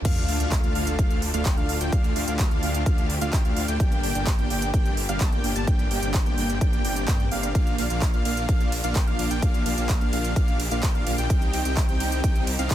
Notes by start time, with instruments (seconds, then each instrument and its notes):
0.05 detuned saw bass D2, string section D3 D4 F4 A4, supersaw synth A3 D4 F4 D5 F5, analog synth lead F5, kick, closed hi-hat, crash, sub drop
0.17 closed hi-hat
0.28 detuned saw bass D2, supersaw synth A3 D4 F4 D5 F5, analog synth lead F5, open hi-hat
0.40 detuned saw bass D2, supersaw synth A3 D4 F4 D5 F5, analog synth lead F5, closed hi-hat
0.52 kick, clap, closed hi-hat
0.64 detuned saw bass D2, supersaw synth A3 D4 F4 D5 F5, analog synth lead F5, closed hi-hat
0.75 detuned saw bass D2, supersaw synth A3 D4 F4 D5 F5, analog synth lead F5, open hi-hat
0.87 closed hi-hat
0.99 detuned saw bass D2, supersaw synth A3 D4 F4 F5, analog synth lead F5, kick, closed hi-hat
1.11 closed hi-hat
1.22 open hi-hat
1.34 detuned saw bass D2, supersaw synth A3 D4 F4 D5 F5, analog synth lead F5, closed hi-hat
1.46 detuned saw bass D2, analog synth lead G5, kick, clap, closed hi-hat
1.57 detuned saw bass D2, supersaw synth A3 D4 F4 D5 F5, analog synth lead F5, closed hi-hat
1.69 detuned saw bass D2, supersaw synth A3 D4 F4 D5 F5, analog synth lead F5, open hi-hat
1.81 detuned saw bass D2, supersaw synth A3 D4 F4 D5 G5, analog synth lead G5, closed hi-hat
1.92 detuned saw bass D2, supersaw synth A3 D4 F4 D5 F5, string section G4, analog synth lead F5, kick, closed hi-hat
2.04 closed hi-hat
2.16 detuned saw bass D2, supersaw synth A3 D4 F4 D5 F5, analog synth lead F5, open hi-hat
2.28 detuned saw bass D2, supersaw synth A3 D4 F4 D5 F5, analog synth lead F5, closed hi-hat
2.39 kick, clap, closed hi-hat
2.51 detuned saw bass D2, supersaw synth A3 D4 F4 D5 F5, analog synth lead F5, closed hi-hat
2.63 detuned saw bass D2, supersaw synth A3 D4 F4 D5 F5, analog synth lead F5, open hi-hat
2.75 closed hi-hat
2.86 detuned saw bass D2, supersaw synth A3 D4 F4 D5 F5, analog synth lead F5, kick, closed hi-hat
2.98 closed hi-hat
3.10 open hi-hat
3.21 detuned saw bass D2, supersaw synth A3 D4 F4 D5 F5, analog synth lead F5, closed hi-hat
3.33 detuned saw bass D2, supersaw synth A3 D4 F4 D5 G5, analog synth lead G5, kick, clap, closed hi-hat
3.45 detuned saw bass D2, supersaw synth A3 D4 F4 D5 F5, analog synth lead F5, closed hi-hat
3.56 detuned saw bass D2, supersaw synth A3 D4 F4 D5 F5, analog synth lead F5, open hi-hat
3.68 detuned saw bass D2, supersaw synth A3 D4 F4 D5 G5, analog synth lead G5, closed hi-hat
3.80 detuned saw bass G1, string section A#3, supersaw synth A#3 D4 G4 D5 G5, analog synth lead G5, kick, closed hi-hat
3.92 closed hi-hat
4.03 detuned saw bass G1, supersaw synth A#3 D4 G4 D5 G5, analog synth lead G5, open hi-hat
4.15 detuned saw bass G1, supersaw synth A#3 D4 G4 D5 G5, analog synth lead G5, closed hi-hat
4.27 kick, clap, closed hi-hat
4.38 detuned saw bass G1, supersaw synth A#3 D4 G4 D5 G5, analog synth lead G5, closed hi-hat
4.50 detuned saw bass G1, supersaw synth A#3 D4 G4 D5 G5, analog synth lead G5, open hi-hat
4.62 closed hi-hat
4.74 detuned saw bass G1, supersaw synth G4 D5 G5, analog synth lead G5, kick, closed hi-hat
4.86 closed hi-hat
4.97 open hi-hat
5.09 detuned saw bass G1, supersaw synth A#3 D4 G4 D5 F5, analog synth lead F5, closed hi-hat
5.21 detuned saw bass G1, supersaw synth A#3 D4 G4 D5 A5, analog synth lead A5, kick, clap, closed hi-hat
5.32 detuned saw bass G1, supersaw synth A#3 D4 G4 D5 G5, analog synth lead G5, closed hi-hat
5.44 detuned saw bass G1, supersaw synth A#3 D4 G4 D5 G5, analog synth lead G5, open hi-hat
5.56 detuned saw bass G1, supersaw synth A#3 D4 G4 D5 A5, analog synth lead A5, closed hi-hat
5.67 detuned saw bass G1, supersaw synth A#3 D4 G4 D5 G5, string section C4, analog synth lead G5, kick, closed hi-hat
5.79 closed hi-hat
5.91 detuned saw bass G1, supersaw synth A#3 D4 G4 D5 G5, analog synth lead G5, open hi-hat
6.03 detuned saw bass G1, supersaw synth A#3 D4 G4 D5 G5, analog synth lead G5, closed hi-hat
6.14 kick, clap, closed hi-hat
6.26 detuned saw bass G1, supersaw synth A#3 D4 G4 D5 G5, analog synth lead G5, closed hi-hat
6.38 detuned saw bass G1, supersaw synth A#3 D4 G4 D5 G5, analog synth lead G5, open hi-hat
6.49 closed hi-hat
6.61 detuned saw bass G1, supersaw synth A#3 D4 G4 D5 G5, analog synth lead G5, kick, closed hi-hat
6.73 closed hi-hat
6.84 detuned saw bass G1, supersaw synth A#3 D4 G4 D5 G5, analog synth lead G5, open hi-hat
6.96 closed hi-hat
7.08 detuned saw bass G2, analog synth lead G5, kick, clap, closed hi-hat
7.20 closed hi-hat
7.31 detuned saw bass G1, supersaw synth A#3 D4 G4 D5 F5, analog synth lead F5, open hi-hat
7.43 closed hi-hat
7.55 detuned saw bass A#1, supersaw synth A#3 D4 F4 D5 F5, string section D4 F4, analog synth lead F5, kick, closed hi-hat, ride
7.67 closed hi-hat
7.78 detuned saw bass A#1, supersaw synth A#3 D4 F4 D5 F5, analog synth lead F5, open hi-hat, ride
7.90 detuned saw bass A#1, supersaw synth A#3 D4 F4 D5 F5, analog synth lead F5, closed hi-hat
8.02 kick, clap, closed hi-hat, ride
8.14 detuned saw bass A#1, supersaw synth A#3 D4 F4 D5 F5, analog synth lead F5, closed hi-hat
8.25 detuned saw bass A#1, supersaw synth A#3 D4 F4 D5 F5, analog synth lead F5, open hi-hat, ride
8.37 closed hi-hat
8.49 detuned saw bass A#1, supersaw synth A#3 D4 F4 D5 F5, analog synth lead F5, kick, closed hi-hat, ride
8.61 closed hi-hat
8.72 open hi-hat, ride
8.84 detuned saw bass A#1, supersaw synth A#3 D4 F4 D5 F5, analog synth lead F5, closed hi-hat
8.96 detuned saw bass A#1, supersaw synth A#3, analog synth lead G5, kick, clap, closed hi-hat, ride
9.07 detuned saw bass A#1, supersaw synth A#3 D4 F4 D5 F5, analog synth lead F5, closed hi-hat
9.19 detuned saw bass A#1, supersaw synth A#3 D4 F4 D5 F5, analog synth lead F5, open hi-hat, ride
9.31 detuned saw bass A#1, supersaw synth A#3 D4 F4 D5 G5, analog synth lead G5, closed hi-hat
9.42 detuned saw bass A#1, supersaw synth A#3 D4 F4 D5 F5, string section G4, analog synth lead F5, kick, closed hi-hat, ride
9.54 closed hi-hat
9.66 detuned saw bass A#1, supersaw synth A#3 D4 F4 D5 F5, analog synth lead F5, open hi-hat, ride
9.78 detuned saw bass A#1, supersaw synth A#3 D4 F4 D5 F5, analog synth lead F5, closed hi-hat
9.89 kick, clap, closed hi-hat, ride
10.01 detuned saw bass A#1, supersaw synth A#3 D4 F4 D5 F5, analog synth lead F5, closed hi-hat
10.13 detuned saw bass A#1, supersaw synth A#3 D4 F4 D5 F5, analog synth lead F5, open hi-hat, ride
10.24 closed hi-hat
10.36 detuned saw bass A#1, supersaw synth A#3 D4 F4 D5 F5, analog synth lead F5, kick, closed hi-hat, ride
10.48 closed hi-hat
10.60 open hi-hat, ride
10.71 detuned saw bass A#1, supersaw synth A#3 D4 F4 D5 F5, analog synth lead F5, closed hi-hat
10.83 detuned saw bass A#1, supersaw synth A#3 D4 F4 D5 G5, analog synth lead G5, kick, clap, closed hi-hat, ride
10.95 detuned saw bass A#1, supersaw synth A#3 D4 F4 D5 F5, analog synth lead F5, closed hi-hat
11.06 detuned saw bass A#1, supersaw synth A#3 D4 F4 D5 F5, analog synth lead F5, open hi-hat, ride
11.18 detuned saw bass A#1, supersaw synth A#3 D4 F4 D5 G5, analog synth lead G5, closed hi-hat
11.30 detuned saw bass C2, string section C3 C4 D#4, supersaw synth C4 D#4 D#5, analog synth lead G5, kick, closed hi-hat, ride
11.42 closed hi-hat
11.53 detuned saw bass C2, supersaw synth C4 D#4 G4 D#5 G5, analog synth lead G5, open hi-hat, ride
11.65 detuned saw bass C2, supersaw synth C4 D#4 G4 D#5 G5, analog synth lead G5, closed hi-hat
11.77 kick, clap, closed hi-hat, ride
11.88 detuned saw bass C2, supersaw synth C4 D#4 G4 D#5 G5, analog synth lead G5, closed hi-hat
12.00 detuned saw bass C2, supersaw synth C4 D#4 G4 D#5 G5, analog synth lead G5, open hi-hat, ride
12.12 closed hi-hat
12.24 detuned saw bass C2, supersaw synth C4 D#4 G4 G5, analog synth lead G5, kick, closed hi-hat, ride
12.36 closed hi-hat
12.47 open hi-hat, ride
12.59 detuned saw bass C2, supersaw synth C4 D#4 G4 D#5 F5, analog synth lead F5, closed hi-hat
12.71 detuned saw bass C2, supersaw synth C4 D#4 G4 D#5, analog synth lead A5, kick, clap, closed hi-hat, ride